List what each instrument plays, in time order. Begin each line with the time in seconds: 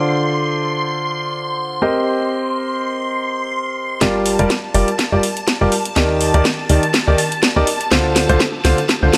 Already playing: grand piano D3 F4 A4 C5 D5, string machine C6
1.82 grand piano C4 G4 A#4 C5 D#5
4.01 analog synth bass G1, grand piano G3 F4 G4 A#4 D5, string machine A5, kick, snare, closed hi-hat
4.26 open hi-hat
4.39 analog synth bass G1, grand piano G3 F4 G4 A#4 D5, closed hi-hat
4.50 kick, snare, closed hi-hat
4.74 analog synth bass G1, grand piano G3 F4 G4 A#4 D5, open hi-hat
4.88 closed hi-hat
4.99 kick, snare, closed hi-hat
5.12 analog synth bass G1, grand piano G3 F4 G4 A#4 D5
5.23 open hi-hat
5.37 closed hi-hat
5.48 kick, snare, closed hi-hat
5.61 analog synth bass G1, grand piano G3 F4 G4 A#4 D5
5.72 open hi-hat
5.85 closed hi-hat
5.96 analog synth bass D#2, grand piano D#3 D#4 G4 A#4 D5, kick, snare, closed hi-hat
6.21 open hi-hat
6.34 analog synth bass D#2, grand piano D#3 D#4 G4 A#4 D5, closed hi-hat
6.45 kick, snare, closed hi-hat
6.69 analog synth bass D#2, grand piano D#3 D#4 G4 A#4 D5, open hi-hat
6.83 closed hi-hat
6.94 kick, snare, closed hi-hat
7.07 analog synth bass D#2, grand piano D#3 D#4 G4 A#4 D5
7.18 open hi-hat
7.32 closed hi-hat
7.43 kick, snare, closed hi-hat
7.56 analog synth bass D#2, grand piano D#4 G4 A#4 D5
7.67 open hi-hat
7.81 closed hi-hat
7.91 analog synth bass D2, grand piano D3 D4 F4 A4 C5, kick, snare, closed hi-hat
8.16 snare, open hi-hat
8.29 analog synth bass D2, grand piano D3 D4 F4 A4 C5, closed hi-hat
8.40 kick, snare, closed hi-hat
8.65 analog synth bass D2, grand piano D3 D4 F4 A4 C5, snare, open hi-hat
8.78 closed hi-hat
8.89 kick, snare, closed hi-hat
9.03 analog synth bass D2, grand piano D3 D4 F4 A4 C5
9.13 snare, open hi-hat